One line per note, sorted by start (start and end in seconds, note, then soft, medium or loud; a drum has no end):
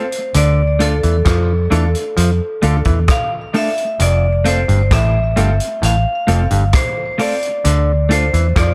0.00 0.31 C5 loud
0.12 closed hi-hat medium
0.34 1.00 D2 loud
0.34 0.62 D3 medium
0.34 0.83 D5 loud
0.34 closed hi-hat loud
0.79 0.93 A3 loud
0.79 0.94 D4 loud
0.79 0.94 D4 medium
0.79 0.94 F4 loud
0.79 0.95 F4 medium
0.79 0.95 A4 loud
0.79 3.16 A4 medium
0.79 closed hi-hat medium
1.03 1.25 E2 medium
1.03 1.17 E3 medium
1.03 closed hi-hat soft
1.25 1.69 F2 loud
1.25 1.53 F3 medium
1.25 kick loud
1.25 cross-stick loud
1.25 closed hi-hat medium
1.70 1.94 E2 loud
1.70 1.85 E3 medium
1.70 1.85 A3 medium
1.70 1.85 D4 medium
1.70 1.85 D4 loud
1.70 1.86 F4 medium
1.70 1.85 F4 medium
1.70 1.86 A4 loud
1.70 closed hi-hat medium
1.95 2.04 F4 soft
1.95 2.04 A4 soft
1.95 closed hi-hat medium
2.17 2.39 F2 medium
2.17 2.31 F3 medium
2.17 closed hi-hat medium
2.62 2.85 D2 medium
2.62 2.76 D3 medium
2.62 2.76 A3 medium
2.62 2.77 D4 medium
2.62 2.76 D4 medium
2.62 2.77 F4 medium
2.62 2.78 A4 loud
2.62 closed hi-hat medium
2.85 3.07 E2 medium
2.85 2.99 E3 medium
2.85 kick medium
2.85 closed hi-hat soft
3.08 3.31 F5 medium
3.08 kick loud
3.08 cross-stick loud
3.08 closed hi-hat medium
3.32 3.41 F4 soft
3.32 3.41 A4 soft
3.53 3.68 A3 medium
3.53 3.68 D4 medium
3.53 3.68 D4 loud
3.53 3.68 F4 medium
3.53 3.69 A4 loud
3.53 4.02 E5 medium
3.53 open hi-hat medium
3.78 closed hi-hat medium
4.00 4.65 F1 loud
4.00 4.27 F2 medium
4.00 4.48 D5 loud
4.00 closed hi-hat loud
4.44 4.59 A3 medium
4.44 4.59 C4 loud
4.44 4.59 C4 medium
4.44 4.60 F4 medium
4.44 4.59 F4 medium
4.44 4.60 A4 loud
4.44 4.89 C5 medium
4.44 closed hi-hat medium
4.68 4.90 G1 medium
4.68 4.82 G2 medium
4.68 closed hi-hat soft
4.91 5.34 A1 medium
4.91 5.18 A2 medium
4.91 5.79 E5 medium
4.91 kick loud
4.91 cross-stick loud
4.91 closed hi-hat loud
5.36 5.59 G1 medium
5.36 5.50 G2 medium
5.36 5.50 A3 medium
5.36 5.51 C4 medium
5.36 5.50 C4 medium
5.36 5.51 F4 medium
5.36 5.51 A4 loud
5.36 closed hi-hat medium
5.60 closed hi-hat medium
5.82 6.05 A1 medium
5.82 5.96 A2 medium
5.82 6.71 F5 loud
5.82 closed hi-hat medium
6.27 6.50 F1 medium
6.27 6.42 F2 medium
6.27 6.41 A3 medium
6.27 6.42 C4 medium
6.27 6.42 F4 medium
6.27 6.42 A4 loud
6.27 closed hi-hat medium
6.51 6.72 G1 medium
6.51 6.64 G2 medium
6.51 6.60 F4 soft
6.51 6.60 A4 soft
6.51 closed hi-hat soft
6.73 7.17 C5 medium
6.73 kick loud
6.73 cross-stick loud
6.73 closed hi-hat medium
6.97 7.06 F4 soft
6.97 7.06 A4 soft
7.18 7.32 A3 medium
7.18 7.33 C4 medium
7.18 7.33 F4 medium
7.18 7.34 A4 loud
7.18 8.14 D5 medium
7.18 open hi-hat soft
7.43 closed hi-hat medium
7.64 8.30 D2 loud
7.64 7.92 D3 medium
7.64 closed hi-hat loud
8.09 8.23 A3 medium
8.09 8.24 D4 medium
8.09 8.25 D4 medium
8.09 8.25 F4 medium
8.09 8.24 F4 loud
8.09 8.25 A4 loud
8.09 8.54 C5 medium
8.09 closed hi-hat medium
8.34 8.55 E2 medium
8.34 8.47 E3 medium
8.34 closed hi-hat soft
8.56 8.74 F2 loud
8.56 8.74 F3 medium
8.56 8.74 D5 medium
8.56 kick loud
8.56 cross-stick loud
8.56 closed hi-hat loud